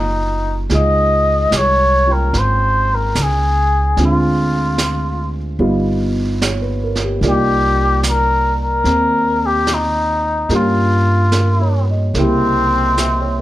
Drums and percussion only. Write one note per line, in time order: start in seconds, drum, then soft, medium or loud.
0.70 brush sweep soft
0.70 snare soft
1.52 snare soft
1.52 hi-hat pedal soft
2.33 brush sweep soft
2.33 snare soft
3.15 snare soft
3.15 hi-hat pedal soft
3.97 brush sweep soft
3.97 snare soft
4.78 snare soft
4.78 hi-hat pedal soft
5.60 brush sweep soft
6.42 snare soft
6.42 hi-hat pedal soft
6.95 snare soft
7.22 brush sweep soft
7.22 snare soft
8.03 snare soft
8.03 hi-hat pedal medium
8.85 brush sweep soft
8.85 snare soft
9.67 snare soft
9.67 hi-hat pedal soft
10.49 brush sweep soft
10.49 snare soft
11.32 snare soft
11.32 hi-hat pedal soft
12.14 brush sweep soft
12.14 snare soft
12.97 snare soft
12.97 hi-hat pedal soft